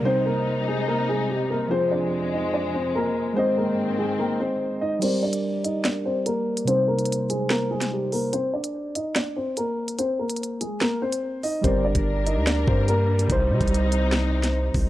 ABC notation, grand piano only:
X:1
M:4/4
L:1/8
Q:1/4=145
K:Gphr
V:1 name="Grand piano"
[Cc] [B,B]2 [A,A] [B,B] [A,A] [G,G] [B,B] | [Cc] [Dd]2 [Ee] [Dd] [Cc] [B,B]2 | [Cc] [B,B]2 [A,A] [B,B] [Cc]2 [Ee] | [Cc] [Dd]2 [Ee] [Dd] [Cc] [B,B]2 |
[Cc] [B,B]2 [A,A] [B,B] [A,A] [G,G] [B,B] | [Cc] [Dd]2 [Ee] [Dd] [Cc] [B,B]2 | [Cc] [B,B]2 [A,A] [B,B] [Cc]2 [Ee] | [Cc] [Dd]2 [Ee] [Dd] [Cc] [B,B]2 |
z8 |]